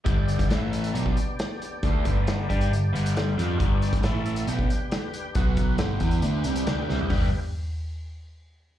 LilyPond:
<<
  \new Staff \with { instrumentName = "Tonewheel organ" } { \time 4/4 \key g \major \tempo 4 = 137 <b d' g' d''>4 <e' a' e''>4 <b d' g' d''>2~ | <b d' g' d''>1~ | <b d' g' d''>4 <e' a' e''>4 <d' g' b' g''>2 | <fis' b' fis''>4 <d' g' b' g''>2. |
<d' g' b' g''>8 r2. r8 | }
  \new Staff \with { instrumentName = "Overdriven electric guitar" } { \clef bass \time 4/4 \key g \major <g, d g>4 <a, e a>4 <b, fis b>8 r4. | <d a d'>8 <g, d g>4 <g d' g'>8 <g, d>8 <g, d g>4 <f c' f'>8 | <g, d g>4 <a, e a>4 <b, fis b>8 r4. | <b, fis b>4 <g, d g>8 <e b e'>8 <d a d'>8 <c g c'>8 <d a d'>8 <c g c'>8 |
<g, d g b d' g'>8 r2. r8 | }
  \new Staff \with { instrumentName = "Picked electric bass" } { \clef bass \time 4/4 \key g \major g,,4 a,,4 b,,8 r4. | d,8 g,,4 g,8 g,,8 g,,4 f,8 | g,,4 a,,4 b,,8 r4. | b,,4 g,,8 e,8 d,8 c,8 d,8 c,8 |
g,,8 r2. r8 | }
  \new DrumStaff \with { instrumentName = "Drums" } \drummode { \time 4/4 <hh bd>8 hh16 <hh bd>16 <hh sn>8 hh16 hh16 hh16 bd16 hh8 <hh sn>8 hh8 | <hh bd>8 <hh bd>8 <hh sn>8 <hh bd>16 hh16 hh8 hh16 hh16 <hh sn>8 <hh sn>8 | <hh bd>8 hh16 <hh bd>16 <hh sn>8 hh16 hh16 hh16 bd16 hh8 <hh sn>8 hh8 | <hh bd>8 <hh bd>8 <hh sn>8 <hh bd>16 hh16 hh8 hh16 hh16 <hh sn>8 sn16 tomfh16 |
<hho bd tomfh>4 r4 r4 r4 | }
>>